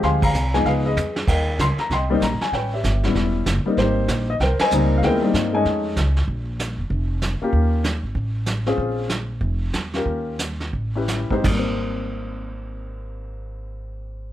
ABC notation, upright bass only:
X:1
M:4/4
L:1/8
Q:"Swing" 1/4=192
K:Ab
V:1 name="Upright bass" clef=bass
=D,,2 C,,2 _D,,2 F,,2 | E,,2 D,, z C,,2 B,,, z | =A,,,2 G,,,2 =E,,,2 _G,,, z | A,,,2 B,,,2 C,, z D,,2 |
E,,2 G,,2 F,,2 ^C,,2 | B,,,3 _F,,, =F,,,3 z | E,,3 A,,, =A,,,4 | B,,,4 F,,,2 _F,,2 |
E,,4 =A,,,3 z | A,,,8- | A,,,8 |]